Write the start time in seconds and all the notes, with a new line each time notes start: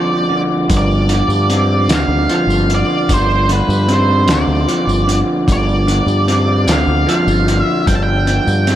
Already playing: G2 D3 F3 C4 D5
0.29 D3
0.69 G1 G2, kick, closed hi-hat, tambourine
0.77 D5
0.91 tambourine
1.09 D3, closed hi-hat, tambourine
1.28 G2, tambourine
1.49 C4, closed hi-hat
1.89 D2 D3, snare, closed hi-hat, tambourine
1.95 F5
2.08 D2
2.29 F3, closed hi-hat
2.36 F5
2.47 G1, tambourine
2.69 D3, closed hi-hat
2.75 D5
3.09 G1 G2, kick, closed hi-hat, tambourine
3.14 C5
3.30 tambourine
3.48 D3 B4, closed hi-hat, tambourine
3.68 G2, tambourine
3.88 C4, closed hi-hat
3.93 C5
4.28 D2 D3, snare, closed hi-hat, tambourine
4.33 D5
4.47 D2
4.68 F3, closed hi-hat
4.87 G1, tambourine
5.08 D3, closed hi-hat
5.48 G1 G2, kick, closed hi-hat, tambourine
5.52 D5
5.69 tambourine
5.87 D3, closed hi-hat, tambourine
6.06 G2, tambourine
6.28 C4, closed hi-hat
6.67 D2 D3, snare, closed hi-hat, tambourine
6.72 F5
6.87 D2
7.07 F3 F5, closed hi-hat
7.27 G1, tambourine
7.47 D3, closed hi-hat
7.61 E5
7.86 G1 G2 G5, kick, closed hi-hat, tambourine
7.95 A5
8.03 G5
8.27 D3, closed hi-hat, tambourine
8.47 G2, tambourine
8.67 C4, closed hi-hat, tambourine